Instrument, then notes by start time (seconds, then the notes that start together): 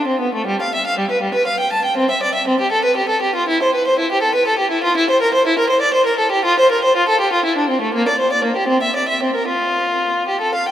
violin
0.08 C4
0.21 B3
0.35 A3
0.47 G3
0.62 F5
0.75 E5
0.87 F5
0.99 G3
1.11 B4
1.22 G3
1.35 B4
1.47 F5
1.60 G5
1.73 A5
1.85 G5
1.97 C4
2.11 E5
2.23 D5
2.35 E5
2.48 C4
2.60 G4
2.72 A4
2.85 B4
2.97 G4
3.09 A4
3.22 G4
3.35 F4
3.49 E4
3.63 C5
3.75 B4
3.87 C5
3.99 E4
4.12 G4
4.22 A4
4.35 B4
4.47 A4
4.59 G4
4.71 E4
4.84 F4
4.97 E4
5.10 C5
5.22 A#4
5.34 C5
5.47 E4
5.59 A#4
5.70 C5
5.82 D5
5.94 C5
6.06 A#4
6.19 A4
6.32 G4
6.45 F4
6.59 C5
6.72 A#4
6.84 C5
6.96 F4
7.09 A4
7.21 G4
7.33 F4
7.45 E4
7.57 D4
7.70 C4
7.82 A3
7.95 A#3
8.08 D5
8.20 C5
8.33 D5
8.44 A#3
8.57 G4
8.68 C4
8.83 E5
8.96 D5
9.09 E5
9.23 C4
9.35 A#4
9.48 F4
10.28 G4
10.41 A4
10.55 F5
10.68 G5